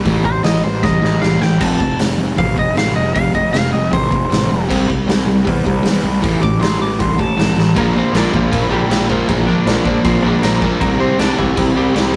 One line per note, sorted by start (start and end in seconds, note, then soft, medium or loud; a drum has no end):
0.04 0.40 A1 medium
0.04 0.23 A2 medium
0.04 0.24 E3 medium
0.04 0.24 A3 loud
0.04 kick loud
0.04 open hi-hat medium
0.25 0.43 A2 medium
0.25 0.43 E3 medium
0.25 0.44 C5 medium
0.25 kick medium
0.44 0.62 A1 loud
0.44 0.62 A2 medium
0.44 0.62 E3 medium
0.44 0.63 D#5 medium
0.44 snare loud
0.44 open hi-hat medium
0.63 0.82 A1 medium
0.63 0.82 A2 medium
0.63 0.82 E3 medium
0.63 0.83 C5 medium
0.83 1.01 C2 loud
0.83 1.01 A2 medium
0.83 1.01 E3 medium
0.83 1.21 D#5 medium
0.83 kick loud
0.83 snare medium
1.02 1.20 A1 medium
1.02 1.20 A2 medium
1.02 1.20 E3 medium
1.02 snare medium
1.22 1.39 C2 medium
1.22 1.40 A2 medium
1.22 1.40 E3 medium
1.22 1.42 F5 medium
1.22 snare medium
1.41 1.59 A1 medium
1.41 1.59 A2 medium
1.41 1.59 E3 medium
1.41 1.61 G5 medium
1.41 snare medium
1.60 1.95 F1 medium
1.60 1.78 F2 medium
1.60 1.79 C3 medium
1.60 1.79 F3 loud
1.60 1.99 A5 loud
1.60 kick loud
1.60 crash loud
1.79 1.97 F2 medium
1.79 1.98 C3 medium
1.79 kick medium
1.99 2.16 F1 medium
1.99 2.17 F2 medium
1.99 2.17 C3 medium
1.99 snare loud
1.99 open hi-hat medium
2.18 2.36 F1 medium
2.18 2.36 F2 medium
2.18 2.36 C3 medium
2.37 2.56 A1 medium
2.37 2.55 F2 medium
2.37 2.55 C3 medium
2.37 2.57 F5 loud
2.37 kick loud
2.37 open hi-hat medium
2.57 2.75 F1 medium
2.57 2.74 F2 medium
2.57 2.75 C3 medium
2.57 2.77 D#5 medium
2.57 kick medium
2.75 2.94 A1 medium
2.75 2.93 F2 medium
2.75 2.94 C3 medium
2.75 2.96 F5 loud
2.75 snare loud
2.75 open hi-hat medium
2.94 3.13 F1 medium
2.94 3.13 F2 medium
2.94 3.13 C3 medium
2.94 3.14 D#5 loud
3.14 3.50 F1 medium
3.14 3.32 F2 medium
3.14 3.32 C3 medium
3.14 3.34 F5 loud
3.14 kick loud
3.14 open hi-hat medium
3.33 3.51 F2 medium
3.33 3.51 C3 medium
3.33 3.53 D#5 medium
3.33 kick medium
3.52 3.71 F1 medium
3.52 3.71 F2 medium
3.52 3.71 C3 medium
3.52 3.72 F5 loud
3.52 snare loud
3.52 open hi-hat medium
3.72 3.91 F1 medium
3.72 3.90 F2 medium
3.72 3.90 C3 medium
3.72 3.92 D#5 medium
3.91 4.10 A1 medium
3.91 4.09 F2 medium
3.91 4.10 C3 medium
3.91 4.68 C5 loud
3.91 kick loud
3.91 open hi-hat medium
4.11 4.29 F1 medium
4.11 4.29 F2 medium
4.11 4.29 C3 medium
4.11 kick medium
4.30 4.49 A1 medium
4.30 4.47 F2 medium
4.30 4.48 C3 medium
4.30 snare loud
4.30 open hi-hat medium
4.48 4.68 F1 medium
4.48 4.67 F2 medium
4.48 4.67 C3 medium
4.68 5.04 C2 medium
4.68 4.86 C3 loud
4.68 4.87 G3 medium
4.68 4.88 C4 loud
4.68 kick loud
4.68 crash loud
4.87 5.05 C3 medium
4.87 5.06 G3 medium
4.87 kick medium
5.07 5.26 C2 medium
5.07 5.25 C3 medium
5.07 5.25 G3 medium
5.07 snare loud
5.07 open hi-hat medium
5.26 5.44 C2 medium
5.26 5.43 C3 medium
5.26 5.44 G3 medium
5.45 5.64 E2 loud
5.45 5.63 C3 medium
5.45 5.63 G3 medium
5.45 kick loud
5.45 open hi-hat medium
5.64 5.83 C2 medium
5.64 5.82 C3 medium
5.64 5.82 G3 medium
5.64 kick medium
5.83 6.02 E2 medium
5.83 6.01 C3 medium
5.83 6.01 G3 medium
5.83 snare loud
5.83 open hi-hat medium
6.03 6.21 C2 medium
6.03 6.21 C3 medium
6.03 6.21 G3 medium
6.22 6.58 A1 medium
6.22 6.40 A2 medium
6.22 6.40 E3 loud
6.22 6.41 A3 loud
6.22 kick loud
6.22 open hi-hat medium
6.41 6.59 A2 medium
6.41 6.59 E3 medium
6.41 6.61 D6 loud
6.41 kick medium
6.60 6.78 A1 medium
6.60 6.78 A2 medium
6.60 6.78 E3 medium
6.60 6.80 C6 medium
6.60 snare loud
6.60 open hi-hat medium
6.79 6.97 A1 medium
6.79 6.97 A2 medium
6.79 6.97 E3 medium
6.79 7.00 D6 medium
6.99 7.17 C2 medium
6.99 7.17 A2 medium
6.99 7.17 E3 medium
6.99 7.20 C6 medium
6.99 kick loud
6.99 open hi-hat medium
7.18 7.36 A1 medium
7.18 7.35 A2 medium
7.18 7.36 E3 medium
7.18 7.75 A5 loud
7.18 kick medium
7.36 7.54 C2 loud
7.36 7.54 A2 medium
7.36 7.55 E3 loud
7.36 snare loud
7.36 open hi-hat medium
7.56 7.74 A1 medium
7.56 7.74 A2 medium
7.56 7.74 E3 medium
7.56 snare medium
7.75 8.00 A#1 loud
7.75 7.95 A#2 loud
7.75 7.96 F3 loud
7.75 7.96 A#3 loud
7.75 7.96 A#3 medium
7.75 7.95 A#4 medium
7.75 kick loud
7.75 crash medium
7.95 8.13 A#2 medium
7.95 8.13 F3 medium
7.95 8.14 A#3 medium
7.95 8.14 C4 medium
7.95 8.15 C5 medium
8.13 8.25 A#1 loud
8.13 8.32 A#2 medium
8.13 8.33 F3 loud
8.13 8.33 A#3 medium
8.13 8.35 D4 medium
8.13 8.33 D5 medium
8.13 snare loud
8.13 crash medium
8.33 8.45 A#1 medium
8.33 8.50 A#2 medium
8.33 8.50 F3 medium
8.33 8.70 F3 medium
8.33 8.50 A#3 loud
8.33 8.70 F4 medium
8.33 kick loud
8.51 8.64 A#1 medium
8.51 8.69 A#2 loud
8.51 8.69 F3 loud
8.51 8.70 A#3 loud
8.51 kick loud
8.51 crash medium
8.70 8.82 A#1 loud
8.70 8.88 A#2 medium
8.70 8.89 F3 medium
8.70 9.08 G3 medium
8.70 8.89 A#3 loud
8.70 9.07 G4 medium
8.89 9.13 A#1 loud
8.89 9.08 A#2 medium
8.89 9.08 F3 loud
8.89 9.09 A#3 loud
8.89 snare loud
8.89 crash medium
9.09 9.27 A#2 medium
9.09 9.28 F3 medium
9.09 9.28 A#3 loud
9.09 9.28 F4 loud
9.09 kick medium
9.28 9.52 A#1 medium
9.28 9.46 A#2 medium
9.28 9.46 E3 medium
9.28 9.47 F3 loud
9.28 9.47 A#3 loud
9.28 9.46 E4 loud
9.28 kick loud
9.28 crash medium
9.47 9.65 A#2 medium
9.47 9.66 F3 medium
9.47 9.67 A#3 medium
9.47 9.83 D4 medium
9.47 9.83 D5 medium
9.66 9.77 A#1 loud
9.66 9.84 A#2 medium
9.66 9.85 F3 medium
9.66 9.85 A#3 medium
9.66 snare loud
9.66 crash medium
9.84 9.97 A#1 medium
9.84 10.03 A#2 medium
9.84 10.04 F3 medium
9.84 10.05 A#3 loud
9.84 10.05 D4 medium
9.84 10.03 D5 medium
9.84 kick loud
10.04 10.16 A#1 loud
10.04 10.23 A#2 loud
10.04 10.23 F3 loud
10.04 10.24 A#3 loud
10.04 10.24 C4 medium
10.04 10.22 C5 medium
10.04 kick loud
10.04 crash medium
10.22 10.34 A#1 loud
10.22 10.41 A#2 medium
10.22 10.42 F3 medium
10.22 10.43 A#3 loud
10.22 10.43 D4 medium
10.22 10.41 D5 medium
10.42 10.66 A#1 loud
10.42 10.60 A#2 medium
10.42 10.61 F3 medium
10.42 10.69 A#3 loud
10.42 10.61 A#3 loud
10.42 10.70 A#4 medium
10.42 snare loud
10.42 crash medium
10.61 10.79 A#2 medium
10.61 10.80 F3 medium
10.61 10.80 A#3 loud
10.61 kick medium
10.80 11.04 C2 loud
10.80 10.99 C3 loud
10.80 10.99 G3 loud
10.80 10.99 A#3 loud
10.80 11.00 C4 loud
10.80 10.99 A#4 medium
10.80 kick loud
10.80 crash medium
10.99 11.18 C3 medium
10.99 11.19 G3 medium
10.99 11.19 C4 medium
10.99 11.18 C5 medium
11.18 11.30 C2 loud
11.18 11.38 C3 medium
11.18 11.38 G3 loud
11.18 11.39 C4 medium
11.18 11.38 D4 loud
11.18 11.37 D5 medium
11.18 snare loud
11.18 crash medium
11.38 11.50 C2 medium
11.38 11.55 C3 medium
11.38 11.74 E3 medium
11.38 11.56 G3 loud
11.38 11.57 C4 medium
11.38 11.77 E4 medium
11.38 kick medium
11.56 11.69 C2 loud
11.56 11.74 C3 loud
11.56 11.75 G3 loud
11.56 11.76 C4 loud
11.56 kick loud
11.56 crash medium
11.75 11.87 C2 loud
11.75 11.93 C3 loud
11.75 11.93 G3 medium
11.75 12.12 G3 medium
11.75 11.94 C4 loud
11.75 12.16 G4 loud
11.94 12.16 C2 medium
11.94 12.12 C3 medium
11.94 12.13 G3 medium
11.94 12.13 C4 loud
11.94 snare loud
11.94 crash medium